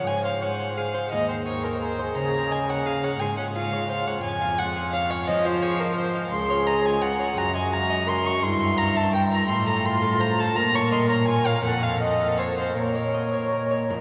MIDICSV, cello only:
0, 0, Header, 1, 2, 480
1, 0, Start_track
1, 0, Key_signature, -5, "major"
1, 0, Tempo, 696864
1, 50, Time_signature, 6, 3, 24, 8
1, 4356, Key_signature, -5, "minor"
1, 6290, Tempo, 715990
1, 7730, Tempo, 750000
1, 9475, End_track
2, 0, Start_track
2, 0, Title_t, "Cello"
2, 0, Program_c, 0, 42
2, 49, Note_on_c, 0, 44, 58
2, 773, Note_on_c, 0, 39, 56
2, 783, Note_off_c, 0, 44, 0
2, 1490, Note_off_c, 0, 39, 0
2, 1494, Note_on_c, 0, 49, 64
2, 2197, Note_off_c, 0, 49, 0
2, 2210, Note_on_c, 0, 44, 60
2, 2911, Note_off_c, 0, 44, 0
2, 2927, Note_on_c, 0, 41, 63
2, 3639, Note_on_c, 0, 53, 64
2, 3650, Note_off_c, 0, 41, 0
2, 4352, Note_off_c, 0, 53, 0
2, 4357, Note_on_c, 0, 37, 74
2, 5055, Note_off_c, 0, 37, 0
2, 5086, Note_on_c, 0, 42, 71
2, 5809, Note_on_c, 0, 43, 73
2, 5819, Note_off_c, 0, 42, 0
2, 6526, Note_off_c, 0, 43, 0
2, 6530, Note_on_c, 0, 45, 70
2, 7235, Note_off_c, 0, 45, 0
2, 7249, Note_on_c, 0, 46, 78
2, 7952, Note_off_c, 0, 46, 0
2, 7966, Note_on_c, 0, 41, 64
2, 8669, Note_off_c, 0, 41, 0
2, 8681, Note_on_c, 0, 46, 61
2, 9411, Note_on_c, 0, 41, 57
2, 9420, Note_off_c, 0, 46, 0
2, 9475, Note_off_c, 0, 41, 0
2, 9475, End_track
0, 0, End_of_file